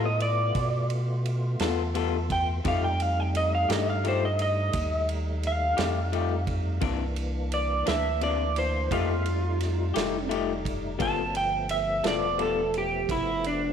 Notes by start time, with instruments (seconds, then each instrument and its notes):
Already playing: analog synth bass A2, tonewheel organ A3 B3 F4
0.05 clean electric guitar D#5
0.20 clean electric guitar D5, ride
0.55 analog synth bass B2, kick, ride
0.90 ride
1.25 ride
1.59 analog synth bass E2, clean electric guitar B3 F4 A4, snare, ride
1.95 clean electric guitar G3 B3 F4 A4, ride
2.30 clean electric guitar G5, kick, ride
2.64 analog synth bass F2, clean electric guitar F3 A3 D#4 G4 F5, tonewheel organ G3 A3 D#4, kick, ride
2.84 clean electric guitar G5
3.00 clean electric guitar F5, ride
3.20 clean electric guitar G5
3.35 clean electric guitar D#5, ride
3.55 clean electric guitar F5
3.69 analog synth bass G2, clean electric guitar A3 D#4 G4 D#5, snare, ride
3.90 clean electric guitar F5
4.04 clean electric guitar F3 A3 D#4 G4, ride
4.08 clean electric guitar C5
4.25 clean electric guitar D#5
4.39 clean electric guitar D#5, ride
4.73 analog synth bass D#2, kick, ride
5.09 ride
5.43 clean electric guitar F5, ride
5.77 analog synth bass F2, clean electric guitar A3 D#4 G4, snare, ride
6.12 clean electric guitar F3 A3 D#4 G4, ride
6.47 kick, ride
6.81 analog synth bass C2, clean electric guitar C3 E3 A#3 D4, tonewheel organ E3 A#3 D4, kick, ride
7.16 ride
7.52 clean electric guitar D5, ride
7.86 analog synth bass D2, clean electric guitar E3 A#3 D4 E5, snare, ride
8.21 clean electric guitar C3 E3 A#3 D4 D5, ride
8.56 clean electric guitar C5, ride
8.91 analog synth bass F2, clean electric guitar F3 A3 D#4 F4 G4, tonewheel organ G#3 A#3 E5, kick, ride
9.26 tonewheel organ G3 A3 D#4, ride
9.60 snare, ride
9.94 analog synth bass F1, clean electric guitar A3 D#4 G4, snare, ride
10.29 clean electric guitar F3 A3 D#4 G4, ride
10.65 kick, ride
10.99 analog synth bass G1, tonewheel organ F#3 A#3 C4, clean electric guitar G3 B3 F4 A4 A5, kick, ride
11.34 tonewheel organ F3 A3 B3, clean electric guitar G5, ride
11.69 clean electric guitar E5, ride
12.04 analog synth bass E1, clean electric guitar B3 F4 A4 D5, snare, ride
12.38 clean electric guitar G3 B3 F4 A4, ride
12.74 ride
12.78 clean electric guitar G4
13.09 analog synth bass F1, clean electric guitar E4, kick, ride
13.44 clean electric guitar D4, ride